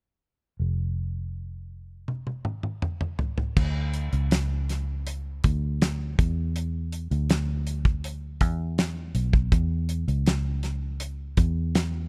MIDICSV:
0, 0, Header, 1, 3, 480
1, 0, Start_track
1, 0, Tempo, 744417
1, 386, Time_signature, 4, 2, 24, 8
1, 7792, End_track
2, 0, Start_track
2, 0, Title_t, "Fingered electric bass"
2, 0, Program_c, 0, 33
2, 384, Note_on_c, 0, 29, 48
2, 2277, Note_off_c, 0, 29, 0
2, 2300, Note_on_c, 0, 38, 79
2, 2639, Note_off_c, 0, 38, 0
2, 2662, Note_on_c, 0, 37, 81
2, 3482, Note_off_c, 0, 37, 0
2, 3511, Note_on_c, 0, 38, 80
2, 3963, Note_off_c, 0, 38, 0
2, 3991, Note_on_c, 0, 40, 88
2, 4562, Note_off_c, 0, 40, 0
2, 4587, Note_on_c, 0, 38, 88
2, 5422, Note_off_c, 0, 38, 0
2, 5422, Note_on_c, 0, 40, 93
2, 5873, Note_off_c, 0, 40, 0
2, 5897, Note_on_c, 0, 35, 81
2, 6120, Note_off_c, 0, 35, 0
2, 6141, Note_on_c, 0, 40, 93
2, 6474, Note_off_c, 0, 40, 0
2, 6498, Note_on_c, 0, 37, 89
2, 7310, Note_off_c, 0, 37, 0
2, 7334, Note_on_c, 0, 40, 89
2, 7791, Note_off_c, 0, 40, 0
2, 7792, End_track
3, 0, Start_track
3, 0, Title_t, "Drums"
3, 1342, Note_on_c, 9, 48, 38
3, 1406, Note_off_c, 9, 48, 0
3, 1462, Note_on_c, 9, 48, 37
3, 1526, Note_off_c, 9, 48, 0
3, 1578, Note_on_c, 9, 47, 46
3, 1643, Note_off_c, 9, 47, 0
3, 1698, Note_on_c, 9, 47, 43
3, 1762, Note_off_c, 9, 47, 0
3, 1820, Note_on_c, 9, 45, 59
3, 1885, Note_off_c, 9, 45, 0
3, 1939, Note_on_c, 9, 45, 53
3, 2004, Note_off_c, 9, 45, 0
3, 2055, Note_on_c, 9, 43, 67
3, 2120, Note_off_c, 9, 43, 0
3, 2177, Note_on_c, 9, 43, 64
3, 2241, Note_off_c, 9, 43, 0
3, 2299, Note_on_c, 9, 49, 84
3, 2300, Note_on_c, 9, 36, 97
3, 2363, Note_off_c, 9, 49, 0
3, 2365, Note_off_c, 9, 36, 0
3, 2538, Note_on_c, 9, 42, 62
3, 2602, Note_off_c, 9, 42, 0
3, 2660, Note_on_c, 9, 42, 41
3, 2725, Note_off_c, 9, 42, 0
3, 2781, Note_on_c, 9, 42, 85
3, 2787, Note_on_c, 9, 38, 98
3, 2845, Note_off_c, 9, 42, 0
3, 2851, Note_off_c, 9, 38, 0
3, 3027, Note_on_c, 9, 42, 65
3, 3031, Note_on_c, 9, 38, 34
3, 3091, Note_off_c, 9, 42, 0
3, 3096, Note_off_c, 9, 38, 0
3, 3266, Note_on_c, 9, 42, 85
3, 3331, Note_off_c, 9, 42, 0
3, 3506, Note_on_c, 9, 42, 72
3, 3510, Note_on_c, 9, 36, 73
3, 3570, Note_off_c, 9, 42, 0
3, 3574, Note_off_c, 9, 36, 0
3, 3750, Note_on_c, 9, 42, 65
3, 3753, Note_on_c, 9, 38, 99
3, 3814, Note_off_c, 9, 42, 0
3, 3818, Note_off_c, 9, 38, 0
3, 3990, Note_on_c, 9, 36, 96
3, 3992, Note_on_c, 9, 42, 57
3, 4054, Note_off_c, 9, 36, 0
3, 4057, Note_off_c, 9, 42, 0
3, 4228, Note_on_c, 9, 42, 77
3, 4293, Note_off_c, 9, 42, 0
3, 4465, Note_on_c, 9, 42, 60
3, 4530, Note_off_c, 9, 42, 0
3, 4588, Note_on_c, 9, 42, 39
3, 4652, Note_off_c, 9, 42, 0
3, 4704, Note_on_c, 9, 42, 88
3, 4711, Note_on_c, 9, 38, 104
3, 4769, Note_off_c, 9, 42, 0
3, 4775, Note_off_c, 9, 38, 0
3, 4943, Note_on_c, 9, 42, 66
3, 5008, Note_off_c, 9, 42, 0
3, 5062, Note_on_c, 9, 36, 85
3, 5127, Note_off_c, 9, 36, 0
3, 5186, Note_on_c, 9, 42, 88
3, 5250, Note_off_c, 9, 42, 0
3, 5421, Note_on_c, 9, 42, 76
3, 5422, Note_on_c, 9, 36, 80
3, 5485, Note_off_c, 9, 42, 0
3, 5487, Note_off_c, 9, 36, 0
3, 5663, Note_on_c, 9, 42, 64
3, 5666, Note_on_c, 9, 38, 100
3, 5727, Note_off_c, 9, 42, 0
3, 5731, Note_off_c, 9, 38, 0
3, 5898, Note_on_c, 9, 42, 59
3, 5963, Note_off_c, 9, 42, 0
3, 6019, Note_on_c, 9, 36, 84
3, 6083, Note_off_c, 9, 36, 0
3, 6139, Note_on_c, 9, 36, 94
3, 6139, Note_on_c, 9, 42, 78
3, 6203, Note_off_c, 9, 36, 0
3, 6203, Note_off_c, 9, 42, 0
3, 6376, Note_on_c, 9, 42, 64
3, 6441, Note_off_c, 9, 42, 0
3, 6502, Note_on_c, 9, 42, 41
3, 6566, Note_off_c, 9, 42, 0
3, 6619, Note_on_c, 9, 42, 87
3, 6625, Note_on_c, 9, 38, 99
3, 6683, Note_off_c, 9, 42, 0
3, 6690, Note_off_c, 9, 38, 0
3, 6854, Note_on_c, 9, 42, 70
3, 6859, Note_on_c, 9, 38, 34
3, 6919, Note_off_c, 9, 42, 0
3, 6923, Note_off_c, 9, 38, 0
3, 7093, Note_on_c, 9, 42, 90
3, 7157, Note_off_c, 9, 42, 0
3, 7332, Note_on_c, 9, 42, 77
3, 7335, Note_on_c, 9, 36, 78
3, 7397, Note_off_c, 9, 42, 0
3, 7399, Note_off_c, 9, 36, 0
3, 7576, Note_on_c, 9, 42, 62
3, 7579, Note_on_c, 9, 38, 102
3, 7640, Note_off_c, 9, 42, 0
3, 7644, Note_off_c, 9, 38, 0
3, 7792, End_track
0, 0, End_of_file